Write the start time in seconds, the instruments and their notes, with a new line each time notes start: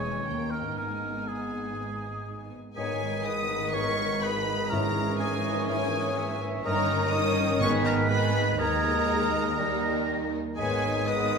Already playing: double bass section E1, cello section E2, harp E3 G#3 C#4 G#4, viola section G#3, violin section C#4 G#5, oboe C#5
0.09 harp D#3
0.14 harp A#3
0.18 harp D#4
0.23 cello section D#2, harp G4
0.27 double bass section D#2, viola section A#3, violin section D#4 G5
0.51 oboe A#4
0.59 harp G#2
0.63 harp B3
0.68 harp D#4
0.72 harp G#4
0.76 double bass section G#1, cello section G#2, viola section B3, oboe A#4, violin section G#5
1.28 oboe G#4
2.75 double bass section G#1, cello section G#2, harp G#2, bassoon D#3, viola section D#3 G#3, french horn section B3 D#4, violin section D#4 B4 G#5, oboe G#4, clarinet C#5, flute B6
2.92 harp D#3
3.09 harp B3
3.25 harp G#4, clarinet B4, oboe D#5, violin section D#6
3.42 harp B3
3.58 harp D#3
3.72 harp G#2, french horn section B3 D#4, clarinet A#4, oboe C#5, violin section C#6
3.91 harp B3
4.07 harp D#3
4.23 harp G#4, clarinet G#4, oboe B4, violin section B5
4.40 harp B3
4.56 harp D#3
4.69 harp G#2, timpani G#2, bassoon E3, viola section E3 C#4, violin section C#4 A#4 A#5, french horn section C#4 E4, oboe A#4, flute C#6
4.89 harp G#3
5.04 harp A#3
5.19 oboe G#4, harp C#5, clarinet D#5, violin section G#5
5.37 harp A#3
5.53 harp G#3
5.67 harp G#2, french horn section C#4 E4, oboe G#4, clarinet C#5, violin section G#5
5.86 harp A#3
6.01 harp G#3
6.17 harp C#5, clarinet E5
6.34 harp A#3
6.50 harp G#3
6.65 double bass section G1, cello section G2, harp G2, bassoon D#3, viola section D#3 C#4, french horn section C#4 D#4, violin section D#4 A#4 A#5, oboe A#4, clarinet D#5
6.82 harp G3
6.98 harp A#3
7.12 viola section D#3 C#4, french horn section C#4 D#4, violin section D#4 A#4 D#6, clarinet A#4, harp C#5, oboe D#5
7.29 harp A#3
7.45 harp G3
7.60 double bass section G#1, timpani G#2, harp G#2, cello section G#2, viola section D#3 B3, french horn section B3 D#4, violin section D#4 G#4 C#6, clarinet B4, oboe C#5, flute B6
7.78 harp D#3
7.85 oboe A#4, violin section A#5
7.94 harp G#3
8.09 viola section D#3 B3, french horn section B3 D#4, violin section D#4 G#4 B5, oboe B4, harp B4
8.27 harp G#3
8.34 french horn section A#3
8.43 harp D#3
8.58 double bass section D#2, cello section D#2, viola section D#3 G#3, harp D#3, french horn section G#3 D#4, violin section D#4 A#4 A#5, oboe A#4, clarinet D#5, flute G#6
8.76 harp A#3
8.93 harp D#4
9.09 harp A#4
9.26 harp D#4
9.42 harp A#3
9.58 harp D#3, viola section D#3 G3, french horn section G3 D#4, bassoon G3, violin section D#4 A#4, flute A#6
9.75 harp A#3
9.91 harp D#4
10.08 harp A#4
10.24 harp D#4
10.41 harp A#3
10.56 double bass section G#1, harp G#2, cello section G#2, viola section D#3 G#3, bassoon G#3, violin section B3 B4 G#5, oboe G#4, clarinet C#5, flute B6
10.60 french horn section B3 D#4
10.74 harp D#3
10.91 harp B3
11.07 viola section D#3 G#3, violin section B3 B4 D#6, harp G#4, clarinet B4, oboe D#5
11.24 harp B3